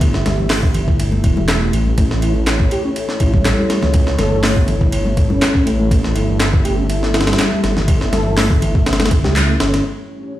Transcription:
Already playing: G1 A3 E4 G4 E5
0.01 kick, ride
0.14 snare
0.26 G1, snare, ride, high conga
0.39 low conga
0.50 snare, clap, open hi-hat
0.63 kick
0.74 ride, low conga
0.88 kick
1.00 ride
1.12 high conga
1.24 E1, kick, ride
1.37 high conga
1.48 snare, clap, ride
1.62 E1
1.73 A1, ride
1.87 high conga
1.98 A1 A3 A4 C#5, kick, ride
2.11 snare
2.22 E4, ride
2.36 low conga
2.47 snare, clap, ride
2.60 kick
2.71 G4, ride
2.85 C#4
2.96 ride
3.09 snare
3.20 A1 E4, kick, ride
3.34 G3, kick
3.45 snare, clap, ride
3.59 high conga
3.70 snare, ride
3.82 C#2, snare, high conga, low conga
3.94 kick, ride
4.07 snare
4.19 G1 A4, snare, ride, high conga
4.32 low conga
4.44 A3, snare, clap, open hi-hat
4.57 kick
4.68 ride, low conga
4.81 kick
4.92 ride
5.06 A3, high conga
5.17 kick, ride
5.30 C#4, high conga
5.42 snare, clap, ride
5.55 kick
5.66 A1 A3, ride
5.79 A3, high conga
5.91 A3 E5, kick, ride
6.04 snare
6.15 G1 E4, ride
6.28 low conga
6.40 snare, clap, ride
6.53 kick
6.65 G4, ride
6.78 C#4
6.90 ride
7.03 snare
7.14 E4, snare, ride
7.21 snare, ride
7.27 G3, snare, ride
7.33 snare, ride
7.39 snare, clap, ride
7.52 high conga
7.63 G1, snare, ride
7.77 snare, high conga, low conga
7.88 kick, ride
8.01 snare
8.13 G1 A4, snare, ride, high conga
8.26 low conga
8.37 A3, snare, clap, open hi-hat
8.51 kick
8.62 ride, low conga
8.75 kick
8.86 snare, ride
8.93 snare, ride
9.00 A3, snare, ride, high conga
9.06 snare, ride
9.11 kick, ride
9.24 C#2 G4, snare, high conga
9.36 G3, clap, ride
9.49 A3
9.60 G1 C#4, snare, ride
9.73 C#4, snare, ride, high conga
9.85 A3 E4 G4 C#5
9.98 shaker
10.23 shaker
10.34 shaker

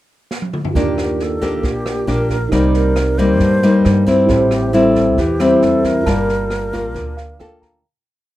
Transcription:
0.31 snare
0.42 high tom
0.54 mid tom
0.65 floor tom
0.71 F4 G4
0.75 D#2 D#3 A#3 D4 G4 D5, kick, snare
0.98 cross-stick, snare
1.20 A4, snare
1.41 A#3 D4 G4, kick, snare
1.63 A#1 A#2 G4, kick, snare
1.86 cross-stick, snare
2.07 A#1 A#3 D4 G4 A#4, snare
2.30 kick, snare
2.49 C2 C3 G3 A#3 D#4 G4 A#4, kick, cross-stick, snare
2.53 D#4 A#4 D5
2.74 A#4, snare
2.96 cross-stick, snare
3.18 G3 A#3 D#4 C5, kick, snare
3.40 G2, kick, snare
3.62 G3 A#3 D#4, snare
3.85 G2, cross-stick, snare
4.06 G3 C4 E4, kick, snare
4.26 A1 A2 E4 G4 A4, kick, snare
4.31 G4 C5
4.51 cross-stick, snare
4.73 G3 C4 E4 A4, snare
4.95 kick, snare
5.18 E2 E3 G4, kick, snare
5.40 G3 C4 E4, cross-stick, snare
5.62 E2 A4, snare
5.84 A#4, kick, snare
6.03 G1 G3 A#3 F4 A5, kick, cross-stick, snare
6.10 D5
6.29 snare
6.50 cross-stick, snare
6.73 A#3 F4, kick, snare
6.94 D2 D3, kick, snare
7.17 F5, snare
7.40 D2 A#3 F4 A4 G5, cross-stick, snare
7.62 A#5, kick, snare

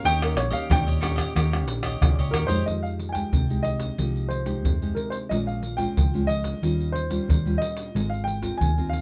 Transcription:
Already playing: A#3 C#4 G4
0.03 D#2 D#3 D#4 G4 C#5 D#5 G5, pandeiro, shaker, surdo
0.22 G4 A#4 C#5 D#5, pandeiro, tamborim, shaker
0.35 A#1 C#5, muted cavaquinho stroke, pandeiro, tamborim, shaker
0.50 A#3 C#4 G4 C#5 D#5 F5, pandeiro, shaker, surdo
0.69 D#2 A#2 D#4 G4 C#5 D#5 G5, pandeiro, tamborim, shaker, surdo
0.87 G4 C#5 D#5, pandeiro, shaker
1.01 A#3 C#4 D#4 G4 C#5 D#5, pandeiro, tamborim, surdo
1.16 G4 C#5 D#5, pandeiro, tamborim, shaker, surdo
1.35 D#2 D#3 D#4 G4 C#5 D#5, pandeiro, tamborim, shaker, surdo
1.52 A#3 C#4 G4, pandeiro, tamborim, shaker
1.67 A#1, muted cavaquinho stroke, pandeiro
1.83 G4 C#5 D#5, pandeiro, tamborim, shaker, surdo
2.01 C2 A#2 A#3 C#4 G4, pandeiro, tamborim, shaker, surdo
2.19 C#2 G4 C#5 D#5, pandeiro, shaker
2.31 D#2 D#4 G4 A#4, pandeiro, tamborim, shaker
2.35 C#5 D#5
2.47 F2 G#3 D#4 G4 C5 C#5 D#5, pandeiro, shaker, surdo
2.66 F2 F3 D#5, pandeiro, surdo
2.83 F5, pandeiro
3.00 pandeiro
3.09 G5 G#5
3.15 G#3 D#4 G4, pandeiro, surdo
3.33 C2 C3, pandeiro, surdo
3.50 G#3 D#4 G4, pandeiro, surdo
3.63 D#5, pandeiro
3.80 pandeiro, surdo
3.98 C2 F3 G#3 D#4 G4, pandeiro, surdo
4.16 pandeiro
4.29 C5, pandeiro
4.45 G#3 D#4 G4, pandeiro, surdo
4.64 F2 C3, pandeiro, surdo
4.82 G#3 D#4 G4, pandeiro
4.95 A#4, pandeiro
5.10 C5, pandeiro
5.29 A#1 A#2 G#3 C#4 F4 D#5, pandeiro, surdo
5.47 F5, pandeiro
5.63 pandeiro
5.77 G#3 C#4 F4 G5, pandeiro, surdo
5.96 C#2 F3, pandeiro, surdo
6.14 G#3 C#4 F4, pandeiro, surdo
6.27 D#5, pandeiro
6.44 pandeiro, surdo
6.62 D#2 D#3 G3 C#4 F4, pandeiro, surdo
6.81 pandeiro
6.92 C5, pandeiro
7.09 G3 C#4 F4, pandeiro, surdo
7.28 D#2 A#2, pandeiro, surdo
7.45 G3 C#4 F4, pandeiro
7.58 D#5, pandeiro
7.77 pandeiro
7.94 G#1 G#3 C4 F4 A#4, pandeiro, surdo
8.10 F5, pandeiro
8.24 G5, pandeiro
8.42 C4 F4 A#4, pandeiro, surdo
8.58 D#2 D#3 G#5, pandeiro, surdo
8.78 C4 F4 A#4, pandeiro, surdo
8.89 F5, pandeiro

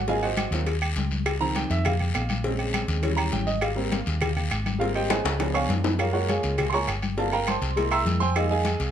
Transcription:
Already playing: G#1
0.07 F#3 A#3 C4 F4 G#4 D#5 F5 G#5, cowbell, high conga, long guiro
0.22 F#4 C5 D#5 F#5, high conga, low agogo
0.36 cowbell, high conga, low agogo, short guiro, claves
0.51 D#2 F#3 A#3 C4 F4, cowbell, short guiro
0.67 cowbell, high conga, low agogo, long guiro
0.82 high conga, low agogo, claves
0.96 C#2, cowbell, high conga, short guiro
1.11 high conga, short guiro
1.26 cowbell, low agogo, long guiro, claves
1.40 D#3 F3 C4 A#5, high conga
1.55 G5, cowbell, high conga, low agogo, short guiro
1.70 F2 E5, cowbell, short guiro
1.85 F5, cowbell, high conga, low conga, low agogo, long guiro, claves
2.00 high conga, low conga, low agogo
2.14 A#1, cowbell, high conga, low timbale, low agogo, short guiro, claves
2.29 high conga, low agogo, short guiro
2.44 C#3 G#3 C4, cowbell, long guiro
2.59 low agogo
2.73 cowbell, high conga, low agogo, short guiro, claves
2.88 D#2, cowbell, short guiro
3.02 E3 G3 C#4, cowbell, high conga, low agogo, long guiro
3.17 A#5, high conga, low agogo, claves
3.32 G#1 G5, cowbell, high conga, short guiro
3.47 D#5, high conga, short guiro
3.61 F5, cowbell, low agogo, long guiro, claves
3.75 G3 A#3 C4, high conga
3.92 cowbell, high conga, low agogo, short guiro
4.06 D#2, cowbell, short guiro
4.21 cowbell, high conga, low conga, low agogo, long guiro, claves
4.37 high conga, low conga, low agogo
4.51 G#1, cowbell, high conga, low agogo, short guiro, claves
4.66 high conga, low agogo, short guiro
4.79 G3 A#3 C4 F4 F5, cowbell, high conga, long guiro
4.95 G4 C5 D#5 G5, high conga, low agogo
5.09 G#4 C5 D#5 G#5, cowbell, high bongo, high conga, high timbale, low agogo, short guiro, claves
5.24 C#2, cowbell, high bongo, high timbale, short guiro
5.39 F3 B3 D4, cowbell, high bongo, high conga, high timbale, low agogo, long guiro
5.54 C#5 F5 G#5 C#6, high conga, low timbale, low agogo, claves
5.69 F#2, cowbell, low bongo, high conga, short guiro
5.84 low bongo, high conga, low timbale, short guiro
5.99 F4 A#4 C#5 F5, cowbell, high conga, low agogo, long guiro, claves
6.13 G#3 A#3 F4 F#4 A#4 C#5 F#5, high conga
6.28 G#4 C#5 F5 G#5, cowbell, high conga, low agogo, short guiro
6.43 C#2, cowbell, short guiro
6.58 cowbell, high conga, low conga, low agogo, long guiro, claves
6.70 G#3 A#3 C6, low agogo
6.74 F4 C#5 G#5 A#5 C#6, high conga
6.87 G1, cowbell, high conga, low agogo, short guiro, claves
7.02 high conga, low agogo, short guiro
7.17 A3 A#3 C4 F4 A4 D5 F5 A5, cowbell, high conga, long guiro
7.32 A#4 F5 G5 A#5, high conga, low agogo
7.47 C5 G5 A5 C6, cowbell, high conga, low agogo, short guiro, claves
7.62 C2, cowbell, short guiro
7.76 G#3 A#3 E4, cowbell, high conga, low agogo, long guiro
7.91 E5 A#5 C6 E6, high conga, low agogo, claves
8.05 F2, cowbell, high conga, short guiro
8.20 C5 G5 G#5 C6, high conga, short guiro
8.35 G3 G#3 A#3 D#4 G#4 D#5 F5 G#5, cowbell, high conga, low agogo, long guiro, claves
8.51 G#4 D#5 F5 G#5, high conga
8.65 cowbell, high conga, low agogo, short guiro
8.80 C2, cowbell, short guiro

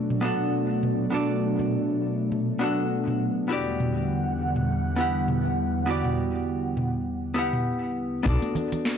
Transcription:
Already playing: B2 F#3 A3 B3 D4 F#4 A4 D5
0.10 mid tom
0.21 B3 D4 F#4 A4
0.26 F#5
0.83 mid tom
1.10 B3 D4 F#4 A4
1.15 D5
1.59 mid tom
2.32 mid tom
2.59 B3 D4 F#4 A4
2.63 F#5
3.08 mid tom
3.48 E2 D3 G3 B3 E4 F#4 G4 F#5
3.52 D5
3.80 mid tom
4.56 mid tom
4.96 B3 E4 G4
5.01 F#5
5.28 mid tom
5.86 B3 E4 F#4 G4
5.90 D5
6.04 mid tom
6.77 mid tom
7.34 B3 E4 G4
7.39 F#5
7.53 mid tom
8.23 B1 B3 D4 F#4 A4, kick, cabasa
8.28 D5
8.42 closed hi-hat, high conga, cabasa
8.55 muted conga, low conga, cabasa
8.72 closed hi-hat, low conga, cabasa
8.85 snare, cabasa

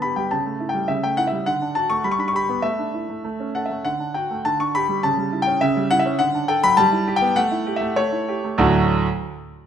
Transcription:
Already playing: D3 B3 A5
0.02 G4 B5
0.16 G3 G5
0.31 C#3 A5
0.46 A3
0.60 E4
0.69 G5
0.74 G3
0.88 C#3 E5
1.03 A3 G5
1.17 E4 F#5
1.27 E5
1.32 G3
1.46 D3 F#5
1.62 D4
1.75 F#4 A5
1.90 A3 C#6
2.04 G3 B5
2.11 C#6
2.18 D4 B5
2.28 C#6
2.33 G4 B5
2.49 B3
2.62 A3 E5
2.79 D4
2.94 E4
3.09 A3
3.24 A3
3.40 C#4
3.55 A4 F#5
3.66 E5
3.71 A3
3.85 D3 F#5
4.00 D4
4.14 F#4 G5
4.31 A3
4.45 D3 A5
4.60 D4 C#6
4.75 G4 B5
4.89 G3
5.03 C#3 A5
5.17 G3
5.33 E4
5.42 G5
5.47 C#4
5.61 C#3 E5
5.77 G3
5.91 E4 F#5
5.99 E5
6.06 C#4
6.19 D3 F#5
6.35 D4
6.48 A4 G5
6.63 F#3 B5
6.77 G3 A5
6.92 E4
7.07 G4
7.16 G5
7.21 B3
7.36 A3 F#5
7.51 E4
7.67 G4
7.76 E5
7.81 A3
7.96 A3 C#5
8.12 E4
8.28 G4
8.44 A3
8.58 D2 A2 F#3 A3 D4 F#4 D5

